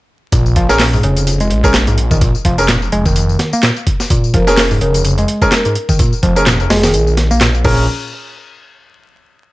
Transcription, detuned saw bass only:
0.33 A#1
1.04 F1
1.51 A#1
2.45 F1
2.93 F1
4.34 F1
4.82 F1
6.23 F1
6.70 F1
6.94 A#1
7.65 A#1

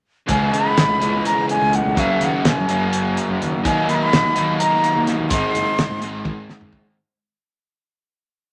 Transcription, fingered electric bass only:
0.29 C#2
0.53 C#3
0.77 G#1
0.89 C#2
1.01 C#2
1.61 C#2
1.86 C#2
1.97 F#2
2.21 D#2
2.45 A#2
2.58 F#3
2.69 F#2
3.29 F#2
3.41 D#2
3.65 D#2
3.89 D#3
4.13 A#1
4.24 D#2
4.37 D#2
4.96 D#2
5.19 D#2
5.31 G#1
5.54 F#1
5.78 C2
5.90 G#2
6.01 G#1
6.60 G#1
6.73 F#1

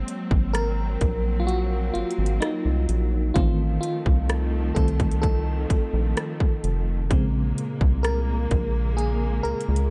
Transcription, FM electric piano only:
Already playing: F#3 A#3 C4
0.53 A#4
1.40 F4
1.47 F#4
1.94 F4
2.40 D#4
3.34 D#3 A3 C4 F4
3.81 F4
4.75 D#3 A3 C4 A4
5.22 A4
7.10 C#3 G#3 C4
8.03 A#4
8.97 G#4
9.43 A#4

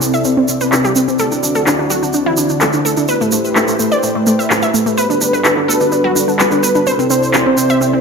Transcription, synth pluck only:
0.02 C4
0.14 E5
0.25 C4
0.37 C4
0.49 C4
0.61 B4
0.72 C4
0.84 G4
0.96 C4
1.08 C4
1.19 A4
1.32 D4
1.43 D4
1.55 A4
1.67 D4
1.79 D4
1.90 F#4
2.03 D4
2.14 D4
2.26 E4
2.38 D4
2.50 D4
2.61 A4
2.74 D4
2.85 A4
2.97 D4
3.09 B4
3.21 A3
3.32 A3
3.56 A3
3.68 A3
3.79 A3
3.92 D5
4.03 A3
4.15 A3
4.27 A3
4.39 E5
4.50 A3
4.63 E5
4.74 A3
4.86 A3
4.97 B4
5.10 D4
5.21 D4
5.33 B4
5.45 D4
5.57 D4
5.68 A4
5.81 D4
5.92 D4
6.04 F#4
6.16 D4
6.28 D4
6.39 B4
6.52 D4
6.63 B4
6.75 D4
6.87 C5
6.99 C4
7.10 C4
7.34 C4
7.46 C4
7.58 C4
7.70 E5
7.81 C4
7.93 C4

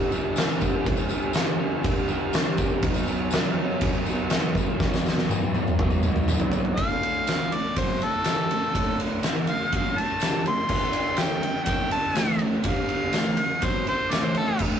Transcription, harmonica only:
6.76 F5
7.54 D5
7.77 C5
8.04 A4
9.49 F5
9.76 F5
9.99 A5
10.47 C6
11.19 G5
11.64 G5
11.92 A5
12.66 F5
13.65 C5
13.88 C5
14.12 D5
14.24 C5
14.37 A4

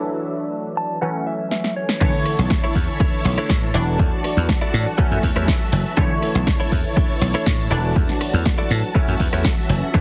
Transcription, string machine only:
2.01 E4 C#5 A5
3.74 F#4 D5 A5
4.99 E5 A5
5.98 E4 C#5 A5
7.71 F#4
8.95 F#4 E5
9.94 E4 A5 C#6

